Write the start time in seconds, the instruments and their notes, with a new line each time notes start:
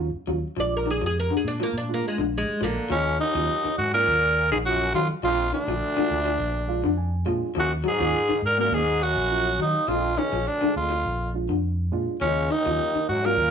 Already playing: fingered electric bass D#2
0.15 muted fingered electric bass stroke
0.27 fingered electric bass D#2, reed electric piano F#3 C#4 F4, clean electric guitar F#3
0.56 fingered electric bass A#1, clean electric guitar F3, reed electric piano G#3 D4 F4, oud D5
0.77 oud A#4
0.86 clean electric guitar D#3
0.90 oud G#4
1.01 fingered electric bass F2, clean electric guitar F3
1.06 oud G#4
1.20 oud A#4
1.30 clean electric guitar D3
1.37 oud G#4
1.44 fingered electric bass A#2, oud D4
1.59 clean electric guitar F3, reed electric piano G#3 D4 F4, oud A#3
1.73 fingered electric bass A#2
1.78 oud D4
1.89 reed electric piano G#3 D4 F4
1.94 oud A#3
2.08 oud G#3
2.18 fingered electric bass A#1, clean electric guitar D3
2.38 oud G#3
2.48 muted fingered electric bass stroke
2.61 fingered electric bass A#1, oud D3 A#3, clean electric guitar F3
2.90 trombone section C#2, fingered electric bass D#2, clean electric guitar F3, tenor saxophone C#4
3.19 trombone section D#2, clean electric guitar D#3, tenor saxophone D#4
3.34 fingered electric bass D#2, reed electric piano F#3 C#4 F4, muted clean electric guitar stroke
3.64 clean electric guitar D#3, muted fingered electric bass stroke
3.78 trombone section F#2, fingered electric bass G#2, tenor saxophone F#4
3.92 trombone section A#2, reed electric piano F#3 C#4 F4, tenor saxophone A#4
4.07 fingered electric bass D#2
4.51 fingered electric bass A#1, trombone section G#2, clean electric guitar D#3, tenor saxophone G#4
4.64 trombone section F#2, reed electric piano F#3 C#4 F4, tenor saxophone F#4
4.94 trombone section F2, fingered electric bass D#3, clean electric guitar F#3, tenor saxophone F4
5.23 fingered electric bass A#1, trombone section F2, clean electric guitar F3, reed electric piano G#3 D4 F4, tenor saxophone F4
5.53 trombone section D2, clean electric guitar D#3, tenor saxophone D4
5.68 fingered electric bass A#1, clean electric guitar F3
5.97 clean electric guitar D3, reed electric piano G#3 D4 F4, muted fingered electric bass stroke
6.11 fingered electric bass D2
6.25 clean electric guitar F3
6.39 fingered electric bass A#1
6.68 reed electric piano G#3 D4 F4 F5
6.84 fingered electric bass F2, clean electric guitar D3
6.98 reed electric piano G#5
7.26 fingered electric bass A#2, clean electric guitar F3, reed electric piano G#3 D4 F4
7.55 fingered electric bass D#2, trombone section F#2, clean electric guitar F3
7.59 tenor saxophone F#4
7.84 trombone section G#2, clean electric guitar F#3, tenor saxophone G#4
7.99 fingered electric bass D#2, clean electric guitar F3, reed electric piano F#3 C#4 F4
8.29 clean electric guitar D#3, muted fingered electric bass stroke
8.42 fingered electric bass G#2, trombone section A#2, tenor saxophone A#4
8.58 trombone section A#2, reed electric piano F#3 C#4 F#4, clean electric guitar A#3, tenor saxophone A#4
8.71 fingered electric bass D#2, trombone section G#2, tenor saxophone G#4
9.03 trombone section F#2, tenor saxophone F#4
9.16 fingered electric bass A#1
9.30 reed electric piano F#3 C#4 F4
9.59 trombone section D#2, fingered electric bass D#3, clean electric guitar F#3, tenor saxophone D#4
9.88 fingered electric bass A#1, trombone section F2, clean electric guitar F3, reed electric piano G#3 D4 F4, tenor saxophone F4
10.18 trombone section C#2, clean electric guitar D#3, tenor saxophone C#4
10.33 fingered electric bass A#1, clean electric guitar F3
10.47 trombone section D2, tenor saxophone D4
10.61 clean electric guitar D3, reed electric piano G#3 D4 G#4, muted fingered electric bass stroke
10.76 fingered electric bass D2, trombone section F2, tenor saxophone F4
10.90 muted clean electric guitar stroke
11.06 fingered electric bass A#1
11.34 reed electric piano G#3 D4 F4
11.49 fingered electric bass F2, clean electric guitar D3
11.92 fingered electric bass A#2, reed electric piano G#3 D4 F4
12.21 trombone section C#2, fingered electric bass D#2, trombone C#3, clean electric guitar F3, tenor saxophone C#4
12.50 trombone section D#2, clean electric guitar D#3, trombone D#3, tenor saxophone D#4
12.66 fingered electric bass D#2, clean electric guitar F3, reed electric piano F#3 C#4 F4
12.95 clean electric guitar D#3, muted fingered electric bass stroke
13.08 trombone section F#2, fingered electric bass G#2, trombone F#3, tenor saxophone F#4
13.24 trombone section A#2, clean electric guitar F#3, reed electric piano F#3 C#4 F4, trombone A#3, tenor saxophone A#4
13.37 fingered electric bass D#2